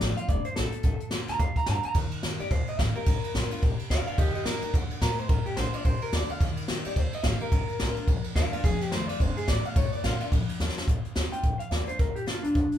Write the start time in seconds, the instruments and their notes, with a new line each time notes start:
Already playing: steel-string acoustic guitar F2, clean electric guitar D5
0.01 upright bass A1, steel-string acoustic guitar D#3 A3 C4 F4, snare, closed hi-hat
0.17 steel-string acoustic guitar C4 F4, clean electric guitar F5, closed hi-hat
0.28 upright bass F1, steel-string acoustic guitar G2, clean electric guitar D5, kick, closed hi-hat
0.45 clean electric guitar C5, muted upright bass stroke, closed hi-hat
0.56 upright bass A#1, steel-string acoustic guitar A2, clean electric guitar A4, snare, closed hi-hat
0.72 muted upright bass stroke, closed hi-hat
0.83 upright bass A#1, steel-string acoustic guitar A#2, kick, closed hi-hat
1.00 muted upright bass stroke, closed hi-hat
1.11 upright bass A#1, steel-string acoustic guitar D3 A#3 D4 F4, snare, closed hi-hat
1.28 upright bass D2, clean electric guitar A#5, snare, closed hi-hat
1.39 upright bass F2, steel-string acoustic guitar C3, clean electric guitar F5, kick, closed hi-hat
1.56 clean electric guitar A#5, muted upright bass stroke, kick, closed hi-hat
1.66 upright bass G2, steel-string acoustic guitar D3, clean electric guitar A#5, snare, closed hi-hat
1.83 clean electric guitar A#5, muted upright bass stroke, closed hi-hat
1.94 upright bass D#2, steel-string acoustic guitar D#3, kick, ride
2.11 muted upright bass stroke, ride
2.23 upright bass A#2, steel-string acoustic guitar D#3 A#3 D#4 G4, snare, ride
2.39 upright bass G2, steel-string acoustic guitar D#4 G4, clean electric guitar D5, ride
2.50 upright bass D#2, steel-string acoustic guitar A#2, clean electric guitar C5, kick, ride
2.67 clean electric guitar D#5, muted upright bass stroke, ride
2.79 upright bass A1, steel-string acoustic guitar D#3 A#3 D#4 G4, clean electric guitar F5, kick, snare, ride
2.95 steel-string acoustic guitar D#4 G4, clean electric guitar A#4, ride
3.06 upright bass A#1, steel-string acoustic guitar A#2, kick, ride
3.24 muted upright bass stroke, ride
3.34 upright bass A#1, steel-string acoustic guitar D3 A#3 D4 F4, snare, ride
3.51 steel-string acoustic guitar D4 F4, muted upright bass stroke, ride
3.63 upright bass A#1, steel-string acoustic guitar C3, kick, ride
3.79 ride
3.90 upright bass D2, steel-string acoustic guitar D3, clean electric guitar D5 F5, kick, snare, ride
4.06 clean electric guitar D5 F5, muted upright bass stroke, ride
4.18 upright bass D#2, steel-string acoustic guitar D#3, clean electric guitar G4 D#5, kick, ride
4.34 clean electric guitar G4 D#5, muted upright bass stroke, ride
4.46 upright bass A#2, steel-string acoustic guitar D#3 A#3 D#4 G4, clean electric guitar A#4, snare, ride
4.62 upright bass G2, steel-string acoustic guitar D#4 G4, ride
4.74 upright bass D#2, steel-string acoustic guitar D3, kick, ride
4.90 muted upright bass stroke, ride
5.01 steel-string acoustic guitar A2, upright bass A#2, clean electric guitar A#4, kick, snare, ride
5.18 clean electric guitar C5, muted upright bass stroke, ride
5.28 upright bass A#1, steel-string acoustic guitar A#2, clean electric guitar A#4, kick, ride
5.45 clean electric guitar G4, muted upright bass stroke, ride
5.56 upright bass A#1, steel-string acoustic guitar D3 A#3 D4 F4, clean electric guitar C5, snare, ride
5.73 steel-string acoustic guitar D4 F4, clean electric guitar D5, ride
5.85 upright bass A#1, steel-string acoustic guitar C3, clean electric guitar C5, kick, ride
6.00 clean electric guitar A#4, muted upright bass stroke, ride
6.12 upright bass D#2, steel-string acoustic guitar D3, clean electric guitar D5, snare, ride
6.29 clean electric guitar F5, muted upright bass stroke, ride
6.40 upright bass D#2, steel-string acoustic guitar D#3, kick, ride
6.57 muted upright bass stroke, ride
6.68 upright bass A#2, steel-string acoustic guitar D#3 A#3 D#4 G4, snare, ride
6.85 upright bass G2, steel-string acoustic guitar D#4 G4, clean electric guitar D5, ride
6.96 upright bass D#2, steel-string acoustic guitar A#2, clean electric guitar C5, kick, ride
7.13 clean electric guitar D#5, muted upright bass stroke, ride
7.23 upright bass A1, steel-string acoustic guitar D#3 A#3 D#4 G4, clean electric guitar F5, kick, snare, ride
7.40 steel-string acoustic guitar D#4 G4, clean electric guitar A#4, muted upright bass stroke, ride
7.52 upright bass A#1, steel-string acoustic guitar A#2, kick, ride
7.69 muted upright bass stroke, ride
7.79 upright bass A#1, steel-string acoustic guitar D3 A#3 D4 F4, snare, ride
7.96 steel-string acoustic guitar D4 F4, ride
8.07 upright bass A#1, steel-string acoustic guitar F2, kick, ride
8.24 muted upright bass stroke, ride
8.35 upright bass D#2, steel-string acoustic guitar D3 A#3 D4 F4, clean electric guitar D5 F5, kick, snare, ride
8.52 steel-string acoustic guitar D4 F4, clean electric guitar D5 F5, muted upright bass stroke, ride
8.63 upright bass F1, steel-string acoustic guitar F2, clean electric guitar G#4, kick, ride
8.80 clean electric guitar G4, muted upright bass stroke, snare, ride
8.92 upright bass C2, steel-string acoustic guitar D#3 A3 C4 F4, clean electric guitar C5, snare, ride
9.08 upright bass A1, steel-string acoustic guitar C4 F4, clean electric guitar D5, ride
9.20 upright bass F1, steel-string acoustic guitar G2, clean electric guitar C5, kick, ride
9.36 clean electric guitar G#4, muted upright bass stroke, ride
9.48 upright bass A1, steel-string acoustic guitar A2, clean electric guitar D5, kick, snare, ride
9.63 clean electric guitar F5, muted upright bass stroke, ride
9.76 upright bass A#1, steel-string acoustic guitar A#2, clean electric guitar C#5, kick, ride
9.92 clean electric guitar D5, muted upright bass stroke, ride
10.03 upright bass A#1, steel-string acoustic guitar D3 A#3 D4 F4, clean electric guitar F5, snare, ride
10.20 steel-string acoustic guitar D4 F4, clean electric guitar D5, ride
10.32 upright bass A#1, steel-string acoustic guitar F2, kick, ride
10.48 muted upright bass stroke, ride
10.60 upright bass D#2, steel-string acoustic guitar D3 A#3 D4 F4, snare
10.69 snare
10.77 steel-string acoustic guitar D4 F4, muted upright bass stroke, snare
10.88 upright bass A#1, steel-string acoustic guitar A#2, kick, closed hi-hat
11.05 muted upright bass stroke, closed hi-hat
11.15 upright bass D2, steel-string acoustic guitar D3 A#3 D4 F4, snare, closed hi-hat
11.32 steel-string acoustic guitar D4 F4, clean electric guitar G5, muted upright bass stroke, closed hi-hat
11.44 upright bass A#1, steel-string acoustic guitar F2, kick, closed hi-hat
11.59 clean electric guitar F5, muted upright bass stroke, closed hi-hat
11.71 upright bass D#2, steel-string acoustic guitar D3 A#3 D4 F4, clean electric guitar D5, snare, closed hi-hat
11.87 steel-string acoustic guitar D4 F4, clean electric guitar C5, muted upright bass stroke, closed hi-hat
11.99 upright bass A#1, steel-string acoustic guitar A#2, clean electric guitar A#4, kick, closed hi-hat
12.16 clean electric guitar G4, muted upright bass stroke, closed hi-hat
12.26 upright bass A#1, steel-string acoustic guitar D3 A#3 D4 F4, clean electric guitar F4, snare, closed hi-hat
12.43 upright bass D2, clean electric guitar D4, steel-string acoustic guitar D4 F4, closed hi-hat
12.55 steel-string acoustic guitar F2, upright bass F2, kick, closed hi-hat
12.72 muted upright bass stroke, closed hi-hat